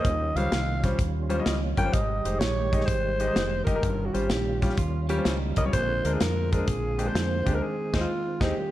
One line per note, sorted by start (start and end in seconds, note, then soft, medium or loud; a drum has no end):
0.00 1.90 C#4 medium
0.00 0.38 D#5 medium
0.04 0.31 D#2 loud
0.04 5.69 D#3 medium
0.04 0.79 D#3 medium
0.04 5.69 G3 medium
0.04 1.92 F4 medium
0.04 kick loud
0.04 closed hi-hat medium
0.35 0.49 C#2 medium
0.35 0.48 G3 medium
0.35 0.48 C#4 medium
0.35 0.48 F4 medium
0.35 0.48 C5 medium
0.35 0.83 F5 loud
0.35 closed hi-hat medium
0.52 0.92 C2 medium
0.52 snare loud
0.52 closed hi-hat medium
0.83 0.95 G3 medium
0.83 0.95 C#4 medium
0.83 0.95 F4 medium
0.83 0.95 C5 medium
0.83 kick medium
0.83 snare soft
0.83 closed hi-hat medium
0.99 1.39 D#2 medium
0.99 kick loud
0.99 closed hi-hat medium
1.30 1.36 G3 medium
1.30 1.36 C#4 medium
1.30 1.36 F4 medium
1.30 1.36 C5 medium
1.30 closed hi-hat medium
1.39 1.53 G3 medium
1.39 1.53 C#4 medium
1.39 1.53 F4 medium
1.39 1.54 D#5 medium
1.46 1.73 C#2 medium
1.46 snare loud
1.46 closed hi-hat medium
1.77 1.91 G1 medium
1.77 1.83 G3 medium
1.77 1.83 C#4 medium
1.77 1.83 F4 medium
1.77 1.83 A#4 medium
1.77 1.95 G5 medium
1.77 kick medium
1.77 closed hi-hat medium
1.85 1.94 G3 medium
1.85 1.93 C#4 medium
1.85 1.93 F4 medium
1.85 1.94 C5 medium
1.92 2.20 G#1 medium
1.92 2.69 G#2 medium
1.92 3.81 G#3 medium
1.92 3.81 G4 medium
1.92 2.41 D#5 loud
1.92 kick loud
1.92 closed hi-hat medium
2.25 2.39 F1 medium
2.25 2.37 G#3 medium
2.25 2.36 D#4 medium
2.25 2.37 G4 medium
2.25 2.37 C5 medium
2.25 closed hi-hat medium
2.39 2.81 A#1 medium
2.39 2.87 C#5 medium
2.39 snare loud
2.39 closed hi-hat medium
2.73 2.84 G#3 medium
2.73 2.84 D#4 medium
2.73 2.84 G4 medium
2.73 2.84 D#5 medium
2.73 kick medium
2.73 closed hi-hat medium
2.81 snare soft
2.85 3.28 G#1 medium
2.85 3.64 C5 loud
2.85 kick loud
2.85 closed hi-hat medium
3.20 3.26 G#3 medium
3.20 3.26 D#4 medium
3.20 3.26 G4 medium
3.20 3.26 D#5 medium
3.20 closed hi-hat medium
3.27 3.42 G#3 medium
3.27 3.43 D#4 medium
3.27 3.42 G4 medium
3.27 3.42 D#5 medium
3.36 3.62 F1 medium
3.36 snare loud
3.36 closed hi-hat medium
3.64 3.81 F#1 medium
3.64 3.73 G#3 medium
3.64 3.73 D#4 medium
3.64 3.73 G4 medium
3.64 4.07 A#4 medium
3.64 3.73 D#5 medium
3.64 kick medium
3.64 closed hi-hat medium
3.75 3.83 G#3 medium
3.75 3.84 D#4 medium
3.75 3.83 G4 medium
3.75 3.84 A#4 medium
3.82 4.10 G1 medium
3.82 4.58 G2 medium
3.82 5.70 C#4 medium
3.82 7.58 F4 medium
3.82 kick loud
3.82 closed hi-hat medium
4.06 4.16 F#4 medium
4.14 4.28 G#1 medium
4.14 4.26 G3 medium
4.14 4.26 C#4 medium
4.14 4.26 F4 medium
4.14 4.62 G4 medium
4.14 4.26 C5 medium
4.14 closed hi-hat medium
4.30 4.71 A#1 medium
4.30 snare loud
4.30 closed hi-hat medium
4.62 4.73 G3 medium
4.62 4.74 C#4 medium
4.62 4.74 F4 medium
4.62 4.74 G4 medium
4.62 kick medium
4.62 snare soft
4.62 closed hi-hat medium
4.69 snare soft
4.77 5.18 D#2 medium
4.77 5.08 F4 medium
4.77 kick loud
4.77 closed hi-hat medium
5.09 5.15 G3 medium
5.09 5.24 A#3 medium
5.09 5.15 C#4 medium
5.09 5.15 F4 medium
5.09 5.25 G4 medium
5.09 5.15 G4 loud
5.09 closed hi-hat medium
5.17 5.32 G3 medium
5.17 5.32 C#4 medium
5.17 5.32 F4 medium
5.17 5.33 C5 medium
5.25 5.52 C#2 medium
5.25 5.70 G3 medium
5.25 5.70 D#4 medium
5.25 snare loud
5.25 closed hi-hat medium
5.56 5.71 C2 medium
5.56 5.63 G3 medium
5.56 5.63 C#4 medium
5.56 5.63 F4 medium
5.56 5.63 A#4 medium
5.56 5.65 D#5 medium
5.56 kick medium
5.56 closed hi-hat medium
5.65 5.73 G3 medium
5.65 5.73 C#4 medium
5.65 5.73 F4 medium
5.65 5.73 C#5 medium
5.73 6.00 A#1 loud
5.73 6.48 A#2 medium
5.73 7.61 D3 medium
5.73 8.54 G#3 medium
5.73 7.60 A#3 medium
5.73 7.61 C4 medium
5.73 6.15 C5 loud
5.73 kick loud
5.73 closed hi-hat medium
6.05 6.18 D2 medium
6.05 6.16 G#3 medium
6.05 6.16 C4 medium
6.05 6.16 D4 medium
6.05 6.16 A#4 medium
6.05 closed hi-hat medium
6.14 6.23 G#4 medium
6.20 6.61 F2 medium
6.20 6.54 A#4 medium
6.20 snare loud
6.20 closed hi-hat medium
6.52 6.64 G#3 medium
6.52 6.64 C4 medium
6.52 6.64 D4 medium
6.52 7.09 G#4 medium
6.52 6.64 A#4 medium
6.52 kick medium
6.52 closed hi-hat medium
6.68 7.08 A#1 medium
6.68 kick loud
6.68 closed hi-hat medium
6.98 7.05 G#3 medium
6.98 7.04 C4 medium
6.98 7.04 D4 medium
6.98 7.05 G4 medium
6.98 closed hi-hat medium
7.06 7.21 G#3 medium
7.06 7.21 C4 medium
7.06 7.22 D4 medium
7.06 7.21 C5 medium
7.06 7.56 C5 medium
7.15 7.41 F2 medium
7.15 snare loud
7.15 closed hi-hat medium
7.46 7.60 D2 medium
7.46 7.52 G#3 medium
7.46 7.52 C4 medium
7.46 7.52 D4 medium
7.46 7.52 G4 medium
7.46 kick medium
7.46 closed hi-hat medium
7.54 7.63 G#3 medium
7.54 7.62 C4 medium
7.54 7.62 D4 medium
7.54 7.64 A#4 medium
7.54 7.63 A#4 medium
7.62 8.71 D#3 medium
7.62 8.56 C4 medium
7.62 8.00 G#4 medium
7.93 8.05 D#2 medium
7.93 8.05 G#3 medium
7.93 8.05 C4 medium
7.93 8.05 D#4 medium
7.93 8.05 C5 medium
7.93 kick loud
7.93 snare loud
7.93 crash medium
8.01 8.44 F4 medium
8.41 8.52 D#2 medium
8.41 8.52 G#3 medium
8.41 8.52 C4 medium
8.41 8.52 D#4 loud
8.41 8.71 G4 medium
8.41 kick medium
8.41 snare medium
8.57 8.71 G3 medium
8.57 8.71 A#3 medium
8.57 8.71 C#4 medium
8.57 8.71 F4 medium